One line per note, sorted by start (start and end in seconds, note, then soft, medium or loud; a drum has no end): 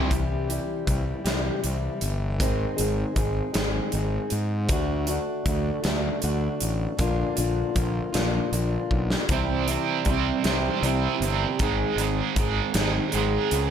0.00 0.12 C3 medium
0.00 0.11 E3 medium
0.00 0.11 G3 medium
0.00 0.11 C4 medium
0.09 0.58 C2 medium
0.09 0.86 C3 loud
0.09 0.85 E3 loud
0.09 0.51 G3 medium
0.09 0.49 E4 medium
0.09 0.47 G4 loud
0.09 kick loud
0.09 closed hi-hat medium
0.48 0.87 G3 medium
0.48 0.88 E4 medium
0.48 0.89 G4 medium
0.48 closed hi-hat medium
0.87 1.11 C2 medium
0.87 1.27 E3 medium
0.87 1.26 G3 medium
0.87 1.25 E4 medium
0.87 1.23 G4 medium
0.87 kick medium
0.87 closed hi-hat medium
1.25 1.49 C2 medium
1.25 2.03 C3 medium
1.25 1.61 E3 medium
1.25 1.62 G3 medium
1.25 1.63 E4 medium
1.25 1.65 G4 medium
1.25 snare medium
1.25 closed hi-hat medium
1.62 1.88 C2 medium
1.62 2.37 E3 medium
1.62 2.38 G3 medium
1.62 2.38 E4 medium
1.62 2.39 G4 medium
1.62 closed hi-hat medium
2.01 2.40 G1 medium
2.01 closed hi-hat medium
2.39 2.64 G#1 medium
2.39 3.16 G#2 medium
2.39 3.17 D#3 medium
2.39 2.79 G#3 medium
2.39 2.78 C4 medium
2.39 2.77 D#4 loud
2.39 2.76 G#4 loud
2.39 kick medium
2.39 closed hi-hat medium
2.77 3.03 G#1 medium
2.77 3.14 G#3 medium
2.77 3.15 C4 medium
2.77 3.17 D#4 medium
2.77 3.17 G#4 medium
2.77 closed hi-hat medium
3.15 3.40 G#1 medium
3.15 3.54 G#3 medium
3.15 3.54 C4 medium
3.15 3.53 D#4 medium
3.15 3.52 G#4 medium
3.15 kick medium
3.15 closed hi-hat medium
3.54 3.79 G#1 medium
3.54 4.33 G#2 medium
3.54 4.32 D#3 medium
3.54 3.91 G#3 medium
3.54 3.92 C4 medium
3.54 3.94 D#4 medium
3.54 3.95 G#4 medium
3.54 snare loud
3.54 closed hi-hat medium
3.92 4.17 G#1 loud
3.92 4.67 G#3 medium
3.92 4.68 C4 medium
3.92 4.68 D#4 medium
3.92 closed hi-hat medium
3.96 4.69 G#4 medium
4.30 4.69 G#2 medium
4.30 closed hi-hat medium
4.68 5.17 D2 medium
4.68 5.44 D3 medium
4.68 5.10 A3 medium
4.68 5.09 D4 medium
4.68 5.06 F#4 loud
4.68 kick medium
4.68 closed hi-hat medium
5.07 5.47 D4 medium
5.07 5.47 F#4 medium
5.07 closed hi-hat medium
5.11 5.45 A3 medium
5.45 5.70 D2 medium
5.45 5.85 D3 medium
5.45 5.84 A3 medium
5.45 5.83 D4 medium
5.45 5.82 F#4 medium
5.45 kick medium
5.45 closed hi-hat medium
5.83 6.08 D2 medium
5.83 6.19 D3 medium
5.83 6.21 A3 medium
5.83 6.22 D4 medium
5.83 6.23 F#4 medium
5.83 snare medium
5.83 closed hi-hat medium
6.20 6.47 D2 medium
6.20 6.96 D3 medium
6.20 6.97 A3 medium
6.20 6.97 D4 medium
6.20 6.98 F#4 medium
6.20 closed hi-hat medium
6.60 6.85 A1 medium
6.60 closed hi-hat medium
6.97 7.23 A#1 medium
6.97 7.75 A#2 medium
6.97 7.73 D3 loud
6.97 7.38 A#3 medium
6.97 7.37 D4 loud
6.97 7.34 F4 loud
6.97 kick loud
6.97 closed hi-hat medium
7.36 7.62 A#1 medium
7.36 7.75 A#3 medium
7.36 7.76 D4 medium
7.36 7.76 F4 medium
7.36 closed hi-hat medium
7.74 7.99 A#1 medium
7.74 8.15 D3 medium
7.74 8.14 A#3 medium
7.74 8.13 D4 medium
7.74 8.11 F4 medium
7.74 kick medium
7.74 closed hi-hat medium
8.13 8.38 A#1 medium
8.13 8.92 A#2 medium
8.13 8.50 D3 medium
8.13 8.51 A#3 medium
8.13 8.52 D4 medium
8.13 8.54 F4 medium
8.13 snare medium
8.13 closed hi-hat medium
8.51 8.76 A#1 medium
8.51 9.27 D3 medium
8.51 9.27 A#3 medium
8.51 9.28 D4 medium
8.51 9.28 F4 medium
8.51 closed hi-hat medium
8.91 9.15 B1 medium
8.91 kick medium
9.10 snare medium
9.29 9.76 C2 medium
9.29 10.06 C3 medium
9.29 10.04 E3 medium
9.29 9.70 G3 medium
9.29 9.69 C4 loud
9.29 9.66 E4 loud
9.29 kick loud
9.29 closed hi-hat medium
9.67 10.07 C3 medium
9.67 10.06 G3 medium
9.67 10.08 C4 medium
9.67 10.08 E4 medium
9.67 closed hi-hat medium
10.05 10.30 C2 medium
10.05 10.46 C3 medium
10.05 10.45 E3 medium
10.05 10.45 G3 medium
10.05 10.44 C4 medium
10.05 kick medium
10.05 closed hi-hat medium
10.09 10.42 E4 medium
10.44 10.68 C2 medium
10.44 10.81 E3 medium
10.44 10.82 G3 medium
10.44 10.84 C4 medium
10.44 10.85 E4 medium
10.44 snare loud
10.44 closed hi-hat medium
10.48 11.23 C3 medium
10.82 11.06 C2 loud
10.82 11.22 C3 medium
10.82 11.57 E3 medium
10.82 11.58 G3 medium
10.82 11.58 C4 medium
10.82 11.59 E4 medium
10.82 closed hi-hat medium
11.20 11.44 G1 medium
11.20 11.58 C3 medium
11.20 11.58 G3 medium
11.20 closed hi-hat medium
11.24 11.59 C4 medium
11.59 11.83 G#1 medium
11.59 12.36 G#2 medium
11.59 12.36 D#3 medium
11.59 12.00 G#3 loud
11.59 11.99 C4 medium
11.59 11.98 D#4 loud
11.59 11.96 G#4 loud
11.59 kick loud
11.59 closed hi-hat medium
11.96 12.20 G#1 medium
11.96 12.37 G#2 medium
11.96 12.37 D#4 medium
11.96 12.38 G#4 medium
11.96 closed hi-hat medium
12.00 12.37 D#3 medium
12.00 12.34 G#3 medium
12.00 12.36 C4 medium
12.35 12.60 G#1 medium
12.35 12.75 G#2 medium
12.35 12.76 D#3 medium
12.35 12.75 G#3 medium
12.35 12.75 C4 medium
12.35 12.74 D#4 medium
12.35 12.73 G#4 medium
12.35 kick medium
12.35 closed hi-hat medium
12.74 12.98 G#1 medium
12.74 13.53 G#2 medium
12.74 13.53 D#3 medium
12.74 13.11 G#3 medium
12.74 13.13 C4 medium
12.74 13.14 D#4 medium
12.74 13.15 G#4 medium
12.74 snare loud
12.74 closed hi-hat medium
13.12 13.37 G#1 medium
13.12 13.53 G#2 medium
13.12 13.70 G#3 medium
13.12 13.70 C4 medium
13.12 13.70 D#4 medium
13.12 13.70 G#4 medium
13.12 closed hi-hat medium
13.16 13.53 D#3 medium
13.16 13.54 G#3 medium
13.51 13.70 C#2 medium
13.51 13.70 G#2 medium
13.51 13.70 D#3 medium
13.51 13.70 G#3 medium
13.51 closed hi-hat medium